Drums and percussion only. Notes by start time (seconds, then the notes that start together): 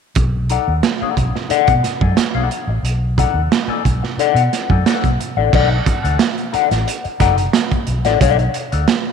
0.15 kick, closed hi-hat
0.50 closed hi-hat
0.83 snare, closed hi-hat
1.17 kick, closed hi-hat
1.36 snare
1.50 closed hi-hat
1.67 kick, closed hi-hat
1.84 snare, closed hi-hat
2.01 kick
2.17 snare, closed hi-hat
2.51 closed hi-hat
2.85 closed hi-hat
3.18 kick, closed hi-hat
3.52 snare, closed hi-hat
3.85 kick, closed hi-hat
4.04 snare
4.19 closed hi-hat
4.36 closed hi-hat
4.53 snare, closed hi-hat
4.70 kick
4.86 snare, closed hi-hat
5.04 kick, closed hi-hat
5.21 closed hi-hat
5.53 kick, crash
5.86 kick, closed hi-hat
6.05 closed hi-hat
6.19 snare, closed hi-hat
6.38 closed hi-hat
6.54 closed hi-hat
6.71 snare, closed hi-hat
6.88 closed hi-hat
7.05 closed hi-hat
7.20 kick, snare, closed hi-hat
7.38 closed hi-hat
7.53 snare, closed hi-hat
7.71 kick, closed hi-hat
7.87 closed hi-hat
8.05 snare, closed hi-hat
8.21 kick, closed hi-hat
8.39 closed hi-hat
8.54 closed hi-hat
8.72 closed hi-hat
8.88 snare, closed hi-hat